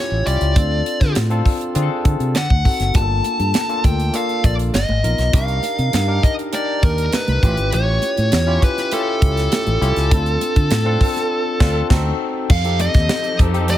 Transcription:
Already playing: tine electric piano C#4 E4 F4 G4, lead electric guitar C#5
0.11 fingered electric bass A1
0.25 fingered electric bass C2, tine electric piano C#4 E4 F4 G4, lead electric guitar D5, closed hi-hat
0.41 fingered electric bass C#2, closed hi-hat
0.55 fingered electric bass D2, tine electric piano C4 D4 F4 A4, kick, closed hi-hat
0.86 closed hi-hat
1.01 fingered electric bass D3, kick, snare, closed hi-hat
1.15 fingered electric bass A2, snare, closed hi-hat
1.30 tine electric piano C4 D4 F4 A4, closed hi-hat
1.46 kick, open hi-hat
1.61 closed hi-hat
1.75 fingered electric bass D3, tine electric piano C4 D4 F4 G#4, closed hi-hat
1.82 tine electric piano A4
2.05 fingered electric bass D3, kick, closed hi-hat
2.20 fingered electric bass C3, closed hi-hat
2.35 fingered electric bass D3, lead electric guitar F#5, snare, closed hi-hat
2.50 fingered electric bass D2, kick
2.64 tine electric piano C4 D#4 F#4 A4, kick, open hi-hat
2.80 fingered electric bass F#1, snare, closed hi-hat
2.94 fingered electric bass G1, tine electric piano A#3 D4 F4 G4, lead electric guitar A5, kick, closed hi-hat, muted conga
3.02 tine electric piano A4
3.24 closed hi-hat, muted conga
3.39 fingered electric bass G2, closed hi-hat
3.54 snare, closed hi-hat, high conga
3.69 tine electric piano A#3 D4 F4 A4, closed hi-hat
3.84 fingered electric bass D2, lead electric guitar G5, kick, closed hi-hat, muted conga
4.00 closed hi-hat
4.13 tine electric piano A#3 D4 F4 A4, lead electric guitar F5, closed hi-hat, muted conga
4.29 closed hi-hat
4.44 fingered electric bass A#1, lead electric guitar D5, kick, closed hi-hat
4.59 closed hi-hat
4.74 fingered electric bass G1, lead electric guitar D#5, snare, closed hi-hat, high conga
4.89 fingered electric bass G#1, high conga
5.03 fingered electric bass A#1, tine electric piano B3 D#4 F4 A#4, closed hi-hat
5.18 fingered electric bass B1, snare, closed hi-hat
5.33 fingered electric bass C2, tine electric piano D4 D#4 G4 A#4, lead electric guitar F5, kick, closed hi-hat, muted conga
5.48 closed hi-hat
5.63 closed hi-hat, muted conga
5.79 fingered electric bass C3, closed hi-hat
5.93 fingered electric bass G2, snare, closed hi-hat, high conga
6.07 tine electric piano D4 D#4 G4 A#4
6.23 lead electric guitar D#5, kick, closed hi-hat
6.39 closed hi-hat
6.52 tine electric piano D4 D#4 G4 A#4, lead electric guitar D5, closed hi-hat, muted conga
6.83 fingered electric bass D#2, lead electric guitar A#4, kick, closed hi-hat
6.98 closed hi-hat
7.12 lead electric guitar B4, snare, closed hi-hat, high conga
7.28 fingered electric bass C2, closed hi-hat, high conga
7.43 fingered electric bass A1, tine electric piano C#4 E4 F4 G4, kick, closed hi-hat
7.57 fingered electric bass G#1, closed hi-hat
7.72 fingered electric bass A1, lead electric guitar C#5, closed hi-hat, muted conga
8.02 closed hi-hat, muted conga
8.17 fingered electric bass A2, closed hi-hat
8.32 fingered electric bass E2, snare, closed hi-hat, high conga
8.47 tine electric piano C#4 E4 F4 G4
8.62 lead electric guitar B4, kick, closed hi-hat, muted conga
8.78 snare, closed hi-hat
8.92 tine electric piano C#4 E4 F4 G4, lead electric guitar A4, closed hi-hat, muted conga
9.22 fingered electric bass C#2, kick, closed hi-hat
9.37 snare, closed hi-hat
9.52 snare, closed hi-hat, high conga
9.67 fingered electric bass A1, closed hi-hat, high conga
9.81 fingered electric bass C2, tine electric piano C#4 E4 F4 G4, closed hi-hat
9.96 fingered electric bass C#2, snare, closed hi-hat
10.10 fingered electric bass D2, tine electric piano C4 D4 E4 A4, kick, closed hi-hat, muted conga
10.18 tine electric piano F4
10.26 closed hi-hat
10.41 closed hi-hat, muted conga
10.56 fingered electric bass D3, kick, closed hi-hat
10.71 fingered electric bass A2, snare, closed hi-hat, high conga
10.85 tine electric piano C4 D4 F4 A4
11.01 kick, open hi-hat, muted conga
11.16 snare, closed hi-hat
11.59 fingered electric bass D2, tine electric piano C4 D4 F4 A4, kick, snare, crash
11.89 fingered electric bass D2, tine electric piano C4 D#4 F#4 A4, kick, snare, crash
12.50 fingered electric bass F2, string section F3 C4 D#4 G4 A4, lead electric guitar F5, kick, crash, muted conga
12.64 tine electric piano C4 D#4 G4 A4, closed hi-hat
12.80 lead electric guitar D#5, closed hi-hat, muted conga
12.94 fingered electric bass D#2, kick, snare, closed hi-hat
13.09 snare, high conga
13.24 closed hi-hat
13.38 fingered electric bass F2, tine electric piano C4 D#4 G4 A4, kick, closed hi-hat
13.53 tine electric piano C4 D#4 G4 A4, closed hi-hat
13.68 lead electric guitar D#5, closed hi-hat, muted conga

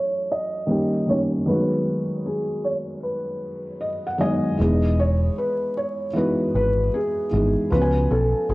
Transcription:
Already playing: felt piano E3 F#3 A3 C#4 D#4 F#4 B4 C#5
0.32 felt piano D#5
0.67 felt piano D#3 G3 A#3 C#4
0.71 felt piano G4
1.06 felt piano D#3 G3 A#3 C#4 C#5
1.11 felt piano G4
1.46 felt piano D#3 F#3 G#3 A3 B4
1.50 felt piano F#4
1.56 felt piano B3
2.26 felt piano G#4
2.64 felt piano C#5
3.03 felt piano B4
3.81 felt piano D#5
4.07 felt piano F#5
4.18 felt piano D#3 F#3 G#3 B3 D#5 G#5
4.23 felt piano G#4
4.58 picked electric bass E1, felt piano E3 G#3 B3 D#4
4.62 felt piano G#4
4.99 felt piano C#5
5.38 felt piano B4
5.77 felt piano C#5
6.13 felt piano E3 G#3 B3 D#4 B4
6.18 felt piano F#4
6.54 picked electric bass G#1, felt piano B4
6.94 felt piano G#4
7.31 picked electric bass G#1, felt piano E3 G#3 B3 D#4
7.36 felt piano G#4
7.70 picked electric bass C#2, felt piano F3 B3 C#4 B4
7.75 felt piano F#4
7.81 felt piano G#5
8.10 picked electric bass B1, felt piano A4
8.49 picked electric bass G#1, felt piano G#4

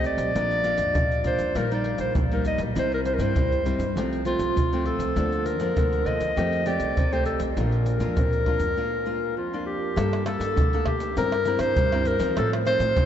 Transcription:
Already playing: upright bass C2, nylon-string guitar C3 A3 C4 G4
0.04 clarinet D5, pandeiro, shaker
0.17 upright bass B1, pandeiro, shaker
0.35 upright bass A#1, nylon-string guitar A#2 A#3 D4 F4, pandeiro, shaker, surdo
0.51 pandeiro, shaker
0.64 nylon-string guitar A#3 D4 F4, pandeiro, shaker
0.78 upright bass F2, pandeiro, shaker
0.95 upright bass A#1, nylon-string guitar F3, pandeiro, shaker, surdo
1.11 pandeiro, shaker
1.24 nylon-string guitar A#3 D4 F4, clarinet C5, pandeiro, shaker, surdo
1.39 upright bass F2, pandeiro, shaker
1.55 upright bass A#1, nylon-string guitar A#2 G3 A#3 D#4, clarinet A#4, pandeiro, shaker, surdo
1.71 nylon-string guitar G3 A#3 D#4, clarinet D5, pandeiro, shaker
1.84 pandeiro
1.98 upright bass A#1, clarinet C5, pandeiro, shaker
2.15 upright bass A#1, nylon-string guitar A#2, pandeiro, shaker, surdo
2.31 nylon-string guitar G3 A#3 D#4, clarinet A#4, pandeiro, shaker
2.45 clarinet D#5, pandeiro, shaker
2.58 upright bass B1, pandeiro, shaker
2.75 upright bass C2, nylon-string guitar C3 G3 C4 E4, clarinet C5, pandeiro, shaker, surdo
2.92 clarinet A#4, pandeiro, shaker
3.05 clarinet C5, pandeiro, shaker
3.14 clarinet A#4
3.18 upright bass G2, nylon-string guitar G3 C4 E4, clarinet C5, pandeiro, shaker
3.35 upright bass C2, nylon-string guitar G2, pandeiro, shaker, surdo
3.52 pandeiro, shaker
3.65 nylon-string guitar G3 C4 E4, pandeiro, shaker
3.79 upright bass G2, pandeiro, shaker
3.96 upright bass C2, nylon-string guitar C3 F3 A3 C4, pandeiro, shaker, surdo
4.13 pandeiro, shaker
4.25 nylon-string guitar F3 A3 C4, clarinet F4, pandeiro, shaker
4.39 upright bass C2, pandeiro, shaker
4.56 upright bass C2, nylon-string guitar C3, pandeiro, shaker, surdo
4.73 nylon-string guitar F3 A3 C4, pandeiro, shaker
4.86 clarinet A4, pandeiro
4.99 upright bass C2, pandeiro, shaker
5.16 upright bass D2, nylon-string guitar D3 F3 A#3 D4, pandeiro, shaker, surdo
5.32 pandeiro, shaker
5.45 clarinet A#4, pandeiro, shaker
5.59 upright bass F2, nylon-string guitar F3 A#3 D4, pandeiro, shaker
5.76 upright bass D2, nylon-string guitar D3, pandeiro, shaker, surdo
5.93 pandeiro, shaker
6.06 nylon-string guitar F3 A#3 D4, clarinet D#5, pandeiro, surdo
6.20 upright bass D#2, pandeiro, shaker
6.36 upright bass F2, nylon-string guitar F3 A3 C4 G4, pandeiro, shaker, surdo
6.53 pandeiro, shaker
6.66 nylon-string guitar A3 C4 G4, clarinet D5, pandeiro, shaker
6.80 upright bass C2, pandeiro, shaker
6.97 upright bass C2, nylon-string guitar C3, pandeiro, shaker, surdo
7.12 nylon-string guitar A3 C4 G4, clarinet C5, pandeiro, shaker
7.25 clarinet A4, pandeiro, shaker
7.40 upright bass C2, pandeiro, shaker
7.57 upright bass A#1, nylon-string guitar A#2 A#3 D4 F4, clarinet A#4, pandeiro, shaker, surdo
7.72 pandeiro, shaker
7.86 pandeiro, shaker
8.00 upright bass F2, nylon-string guitar A#3 D4 F4, pandeiro, shaker
8.17 upright bass A#1, nylon-string guitar F2, pandeiro, shaker, surdo
8.33 pandeiro, shaker
8.46 nylon-string guitar A#3 D4 F4, pandeiro, surdo
8.59 upright bass F2, pandeiro, shaker
8.77 nylon-string guitar A#2 A#3 D4 F4
9.06 nylon-string guitar A#3 D4 F4
9.37 nylon-string guitar F2, clarinet F4
9.53 nylon-string guitar A#3 D4 F4
9.66 clarinet G4
9.96 upright bass G2, nylon-string guitar G3 A#3 D4 A4, pandeiro, tamborim, shaker, surdo
10.13 pandeiro, tamborim, shaker
10.26 nylon-string guitar A#3 D4 A4, clarinet A4, pandeiro, tamborim, shaker
10.40 upright bass G2, pandeiro, shaker
10.56 upright bass D2, nylon-string guitar D3, pandeiro, shaker, surdo
10.73 nylon-string guitar A#3 D4 A4, pandeiro, shaker
10.86 clarinet G4, pandeiro, tamborim, surdo
11.00 pandeiro, shaker
11.17 upright bass G2, nylon-string guitar G3 C4 E4 A#4, clarinet A#4, pandeiro, shaker, surdo
11.32 pandeiro, tamborim, shaker
11.45 nylon-string guitar C4 E4 A#4, pandeiro, shaker
11.59 upright bass G2, clarinet C5, pandeiro, tamborim, shaker
11.76 upright bass G2, nylon-string guitar G3, pandeiro, shaker, surdo
11.92 nylon-string guitar C4 E4 A#4, pandeiro, tamborim, shaker
12.05 clarinet A#4, pandeiro, shaker
12.19 upright bass E2, nylon-string guitar F3 C4 D#4, pandeiro, shaker
12.36 nylon-string guitar A2, upright bass A2, clarinet A4, pandeiro, tamborim, shaker, surdo
12.53 pandeiro, tamborim, shaker
12.65 nylon-string guitar F3 C4 D#4, clarinet C5, pandeiro, tamborim, shaker
12.80 upright bass A2, pandeiro, shaker
12.96 upright bass C2, nylon-string guitar A2, pandeiro, shaker, surdo

